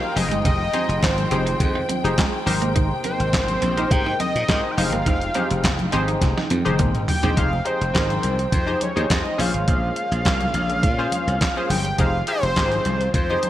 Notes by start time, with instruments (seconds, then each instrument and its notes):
Already playing: string section C3 A#3 D#4 G5, analog polysynth D#4 G4 A#4 C5, analog synth lead F5
0.03 muted conga
0.16 slap bass F1, string section D#3 G#3 F4, analog polysynth D#4 G4 G#4 C5, analog synth lead D#5, muted clean electric guitar stroke, open hi-hat, high conga
0.31 slap bass G1, clean electric guitar G#3, closed hi-hat
0.45 slap bass F1, clean electric guitar D#4, analog synth lead D#5, kick, closed hi-hat, low conga
0.73 clean electric guitar C4, analog polysynth D#4 G4 G#4 C5, closed hi-hat, high conga
0.89 slap bass F1, muted clean electric guitar stroke, closed hi-hat
1.03 slap bass G#1, analog synth lead C5, muted clean electric guitar stroke, kick, snare, clap, closed hi-hat
1.18 closed hi-hat, muted conga, high conga
1.31 slap bass F1, clean electric guitar C4, analog polysynth D#4 G4 G#4 C5, closed hi-hat, high conga
1.46 clean electric guitar D#4, closed hi-hat
1.60 slap bass F2, muted clean electric guitar stroke, kick, closed hi-hat, muted conga, low conga
1.75 clean electric guitar D#4
1.89 clean electric guitar C4, closed hi-hat, high conga
2.04 slap bass F1, analog polysynth D#4 G4 G#4 C5, closed hi-hat
2.18 clean electric guitar G#3, kick, snare, clap, closed hi-hat, muted conga
2.46 slap bass G#1, string section C3 A#3, analog polysynth D#4 G4 A#4 C5, muted clean electric guitar stroke, open hi-hat, high conga
2.62 clean electric guitar A#3, closed hi-hat
2.76 clean electric guitar D#4, kick, closed hi-hat, low conga
3.04 clean electric guitar C4, analog synth lead C5, closed hi-hat, high conga
3.20 slap bass G#1, muted clean electric guitar stroke, closed hi-hat
3.33 slap bass G#1, muted clean electric guitar stroke, kick, snare, clap, closed hi-hat
3.48 closed hi-hat, muted conga, high conga
3.62 slap bass A#1, clean electric guitar C4, closed hi-hat, high conga
3.77 analog polysynth D#4 G4 A#4 C5, clean electric guitar D#4, closed hi-hat
3.91 slap bass G#2, analog synth lead G5, muted clean electric guitar stroke, kick, closed hi-hat, muted conga, low conga
4.06 clean electric guitar D#4, muted conga
4.20 clean electric guitar C4, analog synth lead D#5, closed hi-hat, high conga
4.36 slap bass A#2, closed hi-hat
4.48 slap bass G#2, clean electric guitar G#3, analog polysynth D#4 G4 A#4 C5, kick, snare, clap, closed hi-hat
4.71 analog synth lead G5
4.77 slap bass F1, string section F3 D#4, analog polysynth D#4 G4 G#4 C5, analog synth lead F5, muted clean electric guitar stroke, open hi-hat, high conga
4.92 slap bass G1, clean electric guitar A#3, closed hi-hat
5.06 slap bass F1, clean electric guitar D#4, kick, closed hi-hat, muted conga, low conga
5.21 closed hi-hat
5.34 clean electric guitar C4, analog polysynth D#4 G4 G#4 C5, closed hi-hat, high conga
5.51 slap bass F1, muted clean electric guitar stroke, closed hi-hat
5.64 slap bass F1, muted clean electric guitar stroke, kick, snare, clap, closed hi-hat, muted conga
5.79 closed hi-hat, high conga
5.92 slap bass G#1, clean electric guitar C4, analog polysynth D#4 G4 G#4 C5, closed hi-hat, high conga
6.08 clean electric guitar D#4, closed hi-hat
6.22 slap bass F1, muted clean electric guitar stroke, kick, snare, closed hi-hat, low conga
6.37 clean electric guitar D#4, snare, muted conga
6.50 slap bass F2, clean electric guitar C4, closed hi-hat, high conga
6.65 slap bass F1, analog polysynth D#4 G4 G#4 C5, closed hi-hat, high tom
6.79 slap bass G#1, clean electric guitar A#3, kick, closed hi-hat, mid tom
6.95 slap bass G#1, closed hi-hat, muted conga
7.08 analog synth lead G5, muted clean electric guitar stroke, floor tom, open hi-hat, high conga, low conga
7.23 slap bass A#1, clean electric guitar C4, analog polysynth D#4 G4 G#4 C5, closed hi-hat, floor tom
7.36 slap bass F1, string section F3 G#3 D#4 G5, analog polysynth D#4 G4 G#4 C5, analog synth lead F5, kick, closed hi-hat, low conga
7.53 muted conga
7.65 analog polysynth D#4 G4 G#4 C5, analog synth lead C5, closed hi-hat
7.81 slap bass F1, closed hi-hat
7.94 slap bass G#1, analog polysynth D#4 G4 G#4 A#4, kick, snare, clap, closed hi-hat
8.10 closed hi-hat, muted conga, high conga
8.23 slap bass C2, closed hi-hat, high conga
8.39 closed hi-hat
8.52 slap bass F2, analog synth lead C5, kick, closed hi-hat, muted conga, low conga
8.67 analog polysynth D#4 G4 G#4 C5, muted conga
8.81 analog synth lead C#5, closed hi-hat, high conga
8.96 slap bass D#2, analog polysynth D#4 G4 G#4 C5, closed hi-hat
9.10 slap bass F2, analog synth lead D#5, kick, snare, clap, closed hi-hat
9.26 muted conga
9.38 slap bass A#1, string section C#3 A#3 C#4, analog polysynth C#4 F4 G#4 C5, analog synth lead F5, open hi-hat, high conga
9.54 slap bass G#1, closed hi-hat
9.68 slap bass A#1, kick, closed hi-hat, low conga
9.96 closed hi-hat
10.12 slap bass A#1, closed hi-hat
10.25 slap bass C2, kick, snare, clap, closed hi-hat, muted conga
10.41 closed hi-hat, muted conga, high conga
10.54 slap bass A#1, closed hi-hat, high conga
10.70 closed hi-hat
10.83 slap bass A#2, kick, closed hi-hat, low conga
10.98 analog polysynth C#4 F4 G#4 C5
11.12 closed hi-hat, high conga
11.27 slap bass C2, closed hi-hat
11.41 kick, snare, clap, closed hi-hat
11.56 analog polysynth C#4 F4 G#4 C5, muted conga
11.70 slap bass G1, analog synth lead G5, open hi-hat, high conga
11.85 closed hi-hat
11.98 slap bass F1, string section D#3 F3 F4, analog polysynth D#4 G4 G#4 C5, analog synth lead F5, kick, closed hi-hat, low conga
12.27 analog polysynth D#4 G4 G#4 C5, analog synth lead C5, closed hi-hat
12.43 slap bass F1, closed hi-hat
12.56 slap bass G#1, analog polysynth D#4 G4 G#4 C5, kick, snare, clap, closed hi-hat
12.72 closed hi-hat, high conga
12.85 slap bass C2, closed hi-hat, high conga
13.01 closed hi-hat
13.14 slap bass F2, analog synth lead C5, kick, closed hi-hat, low conga
13.30 analog polysynth D#4 G4 G#4 C5, muted conga
13.43 closed hi-hat, high conga